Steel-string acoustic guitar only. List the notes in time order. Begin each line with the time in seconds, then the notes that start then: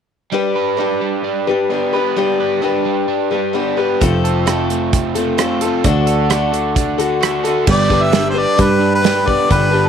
0.32 G3 D4 G4 B4
0.77 G3 D4 G4 B4
1.47 D4 G4 B4
1.70 G3 D4 G4 B4
1.93 D4 G4 B4
2.16 G3 D4 G4 B4
2.62 G3 D4 G4 B4
3.31 D4 G4 B4
3.53 G3 D4 G4 B4
3.77 D4 G4 B4
4.01 F3 A3 C4 F4 A4
4.46 A3 C4 F4 A4
5.15 C4 F4 A4
5.38 A3 C4 F4 A4
5.61 C4 F4 A4
5.84 D3 A3 D4 F#4 A4
6.30 A3 D4 F#4 A4
6.98 D4 F#4 A4
7.20 A3 D4 F#4 A4
7.44 D4 F#4 A4
7.67 G3 D4 G4 B4
7.90 D4 G4 B4
8.12 G3 D4 G4 B4
8.34 D4 G4 B4
8.56 G3 D4 G4 B4
9.03 G3 D4 G4 B4
9.26 D4 G4 B4
9.49 G3 D4 G4 B4
9.71 D4 G4 B4